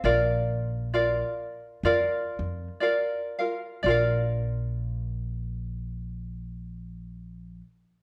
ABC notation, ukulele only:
X:1
M:4/4
L:1/8
Q:"Swing" 1/4=57
K:Bb
V:1 name="Ukulele"
[FBdf]2 [FBdf]2 [FBdf]2 [FBdf] [FBf] | [FBdf]8 |]